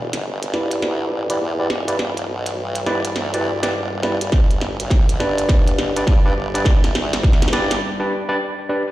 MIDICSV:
0, 0, Header, 1, 5, 480
1, 0, Start_track
1, 0, Key_signature, 1, "minor"
1, 0, Tempo, 582524
1, 1644, Time_signature, 4, 2, 24, 8
1, 7346, End_track
2, 0, Start_track
2, 0, Title_t, "Tine electric piano"
2, 0, Program_c, 0, 4
2, 441, Note_on_c, 0, 74, 82
2, 442, Note_on_c, 0, 67, 66
2, 443, Note_on_c, 0, 64, 73
2, 443, Note_on_c, 0, 71, 64
2, 1037, Note_off_c, 0, 64, 0
2, 1037, Note_off_c, 0, 67, 0
2, 1037, Note_off_c, 0, 71, 0
2, 1037, Note_off_c, 0, 74, 0
2, 1072, Note_on_c, 0, 64, 77
2, 1072, Note_on_c, 0, 67, 74
2, 1072, Note_on_c, 0, 71, 68
2, 1072, Note_on_c, 0, 74, 81
2, 1132, Note_off_c, 0, 67, 0
2, 1133, Note_off_c, 0, 64, 0
2, 1133, Note_off_c, 0, 71, 0
2, 1133, Note_off_c, 0, 74, 0
2, 1312, Note_on_c, 0, 71, 66
2, 1313, Note_on_c, 0, 64, 77
2, 1314, Note_on_c, 0, 74, 81
2, 1315, Note_on_c, 0, 67, 73
2, 1373, Note_off_c, 0, 64, 0
2, 1373, Note_off_c, 0, 71, 0
2, 1374, Note_off_c, 0, 67, 0
2, 1374, Note_off_c, 0, 74, 0
2, 1549, Note_on_c, 0, 67, 73
2, 1550, Note_on_c, 0, 71, 75
2, 1550, Note_on_c, 0, 74, 84
2, 1551, Note_on_c, 0, 64, 82
2, 1611, Note_off_c, 0, 67, 0
2, 1611, Note_off_c, 0, 71, 0
2, 1611, Note_off_c, 0, 74, 0
2, 1612, Note_off_c, 0, 64, 0
2, 2360, Note_on_c, 0, 71, 82
2, 2361, Note_on_c, 0, 64, 94
2, 2361, Note_on_c, 0, 67, 82
2, 2361, Note_on_c, 0, 74, 98
2, 2461, Note_off_c, 0, 64, 0
2, 2461, Note_off_c, 0, 67, 0
2, 2461, Note_off_c, 0, 71, 0
2, 2462, Note_off_c, 0, 74, 0
2, 2753, Note_on_c, 0, 67, 73
2, 2753, Note_on_c, 0, 71, 75
2, 2753, Note_on_c, 0, 74, 92
2, 2754, Note_on_c, 0, 64, 79
2, 2852, Note_off_c, 0, 67, 0
2, 2852, Note_off_c, 0, 71, 0
2, 2852, Note_off_c, 0, 74, 0
2, 2853, Note_off_c, 0, 64, 0
2, 2989, Note_on_c, 0, 67, 82
2, 2989, Note_on_c, 0, 74, 99
2, 2990, Note_on_c, 0, 64, 88
2, 2990, Note_on_c, 0, 71, 82
2, 3051, Note_off_c, 0, 64, 0
2, 3051, Note_off_c, 0, 67, 0
2, 3051, Note_off_c, 0, 71, 0
2, 3051, Note_off_c, 0, 74, 0
2, 3322, Note_on_c, 0, 64, 72
2, 3322, Note_on_c, 0, 67, 64
2, 3322, Note_on_c, 0, 71, 66
2, 3322, Note_on_c, 0, 74, 81
2, 3422, Note_off_c, 0, 64, 0
2, 3422, Note_off_c, 0, 67, 0
2, 3422, Note_off_c, 0, 71, 0
2, 3422, Note_off_c, 0, 74, 0
2, 4282, Note_on_c, 0, 74, 86
2, 4283, Note_on_c, 0, 67, 68
2, 4283, Note_on_c, 0, 71, 70
2, 4284, Note_on_c, 0, 62, 73
2, 4877, Note_off_c, 0, 67, 0
2, 4877, Note_off_c, 0, 71, 0
2, 4877, Note_off_c, 0, 74, 0
2, 4878, Note_off_c, 0, 62, 0
2, 4915, Note_on_c, 0, 62, 75
2, 4915, Note_on_c, 0, 71, 72
2, 4917, Note_on_c, 0, 67, 75
2, 4917, Note_on_c, 0, 74, 88
2, 4974, Note_off_c, 0, 62, 0
2, 4974, Note_off_c, 0, 71, 0
2, 4975, Note_off_c, 0, 67, 0
2, 4975, Note_off_c, 0, 74, 0
2, 5153, Note_on_c, 0, 67, 71
2, 5153, Note_on_c, 0, 74, 88
2, 5154, Note_on_c, 0, 71, 74
2, 5155, Note_on_c, 0, 62, 78
2, 5213, Note_off_c, 0, 67, 0
2, 5213, Note_off_c, 0, 71, 0
2, 5213, Note_off_c, 0, 74, 0
2, 5214, Note_off_c, 0, 62, 0
2, 5393, Note_on_c, 0, 62, 86
2, 5393, Note_on_c, 0, 67, 74
2, 5394, Note_on_c, 0, 71, 77
2, 5394, Note_on_c, 0, 74, 93
2, 5453, Note_off_c, 0, 62, 0
2, 5453, Note_off_c, 0, 67, 0
2, 5453, Note_off_c, 0, 74, 0
2, 5454, Note_off_c, 0, 71, 0
2, 6202, Note_on_c, 0, 62, 96
2, 6203, Note_on_c, 0, 67, 84
2, 6203, Note_on_c, 0, 71, 87
2, 6204, Note_on_c, 0, 74, 104
2, 6302, Note_off_c, 0, 62, 0
2, 6303, Note_off_c, 0, 67, 0
2, 6303, Note_off_c, 0, 71, 0
2, 6303, Note_off_c, 0, 74, 0
2, 6590, Note_on_c, 0, 62, 87
2, 6590, Note_on_c, 0, 71, 76
2, 6590, Note_on_c, 0, 74, 91
2, 6591, Note_on_c, 0, 67, 79
2, 6690, Note_off_c, 0, 62, 0
2, 6691, Note_off_c, 0, 67, 0
2, 6691, Note_off_c, 0, 71, 0
2, 6691, Note_off_c, 0, 74, 0
2, 6829, Note_on_c, 0, 74, 105
2, 6830, Note_on_c, 0, 62, 91
2, 6830, Note_on_c, 0, 67, 81
2, 6830, Note_on_c, 0, 71, 81
2, 6891, Note_off_c, 0, 67, 0
2, 6891, Note_off_c, 0, 71, 0
2, 6891, Note_off_c, 0, 74, 0
2, 6892, Note_off_c, 0, 62, 0
2, 7163, Note_on_c, 0, 62, 71
2, 7163, Note_on_c, 0, 67, 71
2, 7163, Note_on_c, 0, 71, 70
2, 7164, Note_on_c, 0, 74, 86
2, 7262, Note_off_c, 0, 67, 0
2, 7263, Note_off_c, 0, 62, 0
2, 7263, Note_off_c, 0, 71, 0
2, 7263, Note_off_c, 0, 74, 0
2, 7346, End_track
3, 0, Start_track
3, 0, Title_t, "Analog synth pad"
3, 0, Program_c, 1, 89
3, 0, Note_on_c, 1, 55, 80
3, 0, Note_on_c, 1, 64, 72
3, 0, Note_on_c, 1, 71, 72
3, 0, Note_on_c, 1, 74, 88
3, 3531, Note_off_c, 1, 64, 0
3, 3564, Note_on_c, 1, 62, 72
3, 5451, Note_off_c, 1, 74, 0
3, 5483, Note_on_c, 1, 76, 90
3, 6411, Note_off_c, 1, 55, 0
3, 6412, Note_off_c, 1, 71, 0
3, 6415, Note_off_c, 1, 62, 0
3, 6434, Note_off_c, 1, 76, 0
3, 7346, End_track
4, 0, Start_track
4, 0, Title_t, "Wobble bass"
4, 0, Program_c, 2, 39
4, 0, Note_on_c, 2, 28, 92
4, 89, Note_off_c, 2, 28, 0
4, 112, Note_on_c, 2, 31, 95
4, 428, Note_off_c, 2, 31, 0
4, 441, Note_on_c, 2, 28, 90
4, 668, Note_off_c, 2, 28, 0
4, 678, Note_on_c, 2, 38, 96
4, 907, Note_off_c, 2, 38, 0
4, 918, Note_on_c, 2, 33, 98
4, 1146, Note_off_c, 2, 33, 0
4, 1162, Note_on_c, 2, 40, 100
4, 1388, Note_off_c, 2, 40, 0
4, 1399, Note_on_c, 2, 28, 92
4, 1867, Note_off_c, 2, 28, 0
4, 1880, Note_on_c, 2, 35, 95
4, 2347, Note_off_c, 2, 35, 0
4, 2361, Note_on_c, 2, 28, 97
4, 2588, Note_off_c, 2, 28, 0
4, 2602, Note_on_c, 2, 38, 96
4, 2969, Note_off_c, 2, 38, 0
4, 2992, Note_on_c, 2, 28, 96
4, 3449, Note_off_c, 2, 28, 0
4, 3473, Note_on_c, 2, 28, 98
4, 3549, Note_off_c, 2, 28, 0
4, 3561, Note_on_c, 2, 31, 93
4, 3928, Note_off_c, 2, 31, 0
4, 3953, Note_on_c, 2, 35, 99
4, 4269, Note_off_c, 2, 35, 0
4, 4284, Note_on_c, 2, 31, 99
4, 4510, Note_off_c, 2, 31, 0
4, 4520, Note_on_c, 2, 28, 101
4, 4748, Note_off_c, 2, 28, 0
4, 4763, Note_on_c, 2, 35, 102
4, 4989, Note_off_c, 2, 35, 0
4, 5001, Note_on_c, 2, 43, 101
4, 5228, Note_off_c, 2, 43, 0
4, 5244, Note_on_c, 2, 31, 102
4, 5709, Note_off_c, 2, 31, 0
4, 5724, Note_on_c, 2, 38, 100
4, 6190, Note_off_c, 2, 38, 0
4, 6203, Note_on_c, 2, 31, 97
4, 6429, Note_off_c, 2, 31, 0
4, 7346, End_track
5, 0, Start_track
5, 0, Title_t, "Drums"
5, 109, Note_on_c, 9, 38, 43
5, 109, Note_on_c, 9, 42, 62
5, 191, Note_off_c, 9, 38, 0
5, 191, Note_off_c, 9, 42, 0
5, 351, Note_on_c, 9, 42, 54
5, 433, Note_off_c, 9, 42, 0
5, 442, Note_on_c, 9, 38, 52
5, 524, Note_off_c, 9, 38, 0
5, 588, Note_on_c, 9, 42, 65
5, 671, Note_off_c, 9, 42, 0
5, 679, Note_on_c, 9, 38, 51
5, 762, Note_off_c, 9, 38, 0
5, 1069, Note_on_c, 9, 42, 65
5, 1152, Note_off_c, 9, 42, 0
5, 1401, Note_on_c, 9, 38, 57
5, 1483, Note_off_c, 9, 38, 0
5, 1550, Note_on_c, 9, 42, 68
5, 1633, Note_off_c, 9, 42, 0
5, 1641, Note_on_c, 9, 38, 55
5, 1723, Note_off_c, 9, 38, 0
5, 1791, Note_on_c, 9, 42, 39
5, 1873, Note_off_c, 9, 42, 0
5, 2030, Note_on_c, 9, 42, 68
5, 2112, Note_off_c, 9, 42, 0
5, 2269, Note_on_c, 9, 42, 53
5, 2352, Note_off_c, 9, 42, 0
5, 2360, Note_on_c, 9, 38, 63
5, 2443, Note_off_c, 9, 38, 0
5, 2510, Note_on_c, 9, 42, 70
5, 2593, Note_off_c, 9, 42, 0
5, 2601, Note_on_c, 9, 38, 64
5, 2684, Note_off_c, 9, 38, 0
5, 2751, Note_on_c, 9, 42, 51
5, 2833, Note_off_c, 9, 42, 0
5, 2992, Note_on_c, 9, 38, 61
5, 2992, Note_on_c, 9, 42, 69
5, 3075, Note_off_c, 9, 38, 0
5, 3075, Note_off_c, 9, 42, 0
5, 3323, Note_on_c, 9, 38, 75
5, 3406, Note_off_c, 9, 38, 0
5, 3471, Note_on_c, 9, 42, 73
5, 3554, Note_off_c, 9, 42, 0
5, 3561, Note_on_c, 9, 36, 95
5, 3561, Note_on_c, 9, 38, 74
5, 3643, Note_off_c, 9, 36, 0
5, 3643, Note_off_c, 9, 38, 0
5, 3713, Note_on_c, 9, 42, 37
5, 3796, Note_off_c, 9, 42, 0
5, 3803, Note_on_c, 9, 38, 77
5, 3885, Note_off_c, 9, 38, 0
5, 3954, Note_on_c, 9, 42, 66
5, 4037, Note_off_c, 9, 42, 0
5, 4041, Note_on_c, 9, 36, 91
5, 4046, Note_on_c, 9, 38, 76
5, 4124, Note_off_c, 9, 36, 0
5, 4128, Note_off_c, 9, 38, 0
5, 4196, Note_on_c, 9, 42, 55
5, 4279, Note_off_c, 9, 42, 0
5, 4287, Note_on_c, 9, 38, 84
5, 4370, Note_off_c, 9, 38, 0
5, 4436, Note_on_c, 9, 42, 66
5, 4518, Note_off_c, 9, 42, 0
5, 4522, Note_on_c, 9, 36, 96
5, 4526, Note_on_c, 9, 38, 81
5, 4604, Note_off_c, 9, 36, 0
5, 4608, Note_off_c, 9, 38, 0
5, 4676, Note_on_c, 9, 42, 53
5, 4759, Note_off_c, 9, 42, 0
5, 4767, Note_on_c, 9, 38, 80
5, 4849, Note_off_c, 9, 38, 0
5, 4915, Note_on_c, 9, 42, 67
5, 4997, Note_off_c, 9, 42, 0
5, 5001, Note_on_c, 9, 36, 99
5, 5006, Note_on_c, 9, 38, 86
5, 5084, Note_off_c, 9, 36, 0
5, 5089, Note_off_c, 9, 38, 0
5, 5398, Note_on_c, 9, 42, 66
5, 5480, Note_off_c, 9, 42, 0
5, 5481, Note_on_c, 9, 36, 93
5, 5486, Note_on_c, 9, 38, 91
5, 5563, Note_off_c, 9, 36, 0
5, 5569, Note_off_c, 9, 38, 0
5, 5636, Note_on_c, 9, 38, 80
5, 5636, Note_on_c, 9, 42, 38
5, 5719, Note_off_c, 9, 38, 0
5, 5719, Note_off_c, 9, 42, 0
5, 5727, Note_on_c, 9, 38, 95
5, 5810, Note_off_c, 9, 38, 0
5, 5877, Note_on_c, 9, 38, 81
5, 5877, Note_on_c, 9, 42, 62
5, 5960, Note_off_c, 9, 38, 0
5, 5960, Note_off_c, 9, 42, 0
5, 5961, Note_on_c, 9, 36, 97
5, 5968, Note_on_c, 9, 38, 44
5, 6042, Note_off_c, 9, 38, 0
5, 6042, Note_on_c, 9, 38, 56
5, 6043, Note_off_c, 9, 36, 0
5, 6116, Note_off_c, 9, 38, 0
5, 6116, Note_on_c, 9, 38, 86
5, 6116, Note_on_c, 9, 42, 51
5, 6162, Note_off_c, 9, 38, 0
5, 6162, Note_on_c, 9, 38, 78
5, 6199, Note_off_c, 9, 42, 0
5, 6204, Note_off_c, 9, 38, 0
5, 6204, Note_on_c, 9, 38, 98
5, 6286, Note_off_c, 9, 38, 0
5, 6353, Note_on_c, 9, 38, 87
5, 6353, Note_on_c, 9, 42, 66
5, 6436, Note_off_c, 9, 38, 0
5, 6436, Note_off_c, 9, 42, 0
5, 7346, End_track
0, 0, End_of_file